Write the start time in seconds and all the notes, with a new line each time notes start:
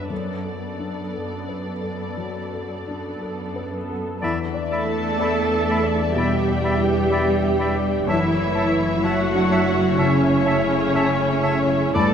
Already playing: F#2 G2 B3 D4 B4 C#5 E5
0.02 D4
0.07 F#2 B3 A4
0.11 D5
0.44 A4
0.63 B3 A4
0.79 D4
1.14 F#2 A4
1.49 B4
1.66 B3 A4
1.83 A4
2.17 F#2 F#3
2.54 A4
2.69 B3 A4
2.88 D4
3.21 F#2 A4
3.56 B4
3.73 B3 A4
3.90 A4
4.22 E2 B3 D4 D5 E5 B5
4.48 B3
4.54 D5
4.70 A3 E4 A4 D5 E5 A5 B5
4.86 E4
4.96 B4
5.19 D5 E5 B5 D6
5.45 E5
5.52 E5
5.69 D5 E5 B5
5.83 D5
5.94 E4
6.16 B2 G3 G4 D5 G5 B5
6.20 E5
6.41 B3
6.47 D5
6.64 E4 D5 E5 B5
6.78 E4
6.89 B4
7.10 D5 E5 B5 D6
7.36 E5
7.43 E5
7.59 D5 E5 B5
7.75 D5
7.85 E4
8.07 F#1 F#2 E3 A3 E4 C#5 E5 A5
8.32 A3
8.39 C#5
8.55 E4 C#5 E5 A5
8.71 E4
8.80 A4
9.03 F#3 F#4 C#5 E5 F#5 A5 C#6
9.27 E5
9.35 D4
9.50 C#5 E5 A5
9.66 C#5
9.75 E4
9.97 C#3 C#4 C#5 E5 A5
10.23 A3
10.30 C#5
10.45 E4 C#5 E5 A5
10.62 E4
10.70 A4
10.94 C#5 E5 A5 C#6
11.19 E5
11.29 C#5
11.43 C#5 E5 A5
11.62 C#5
11.70 E4
11.94 G1 G2 A3 B3 A4 B4 D5 A5 B5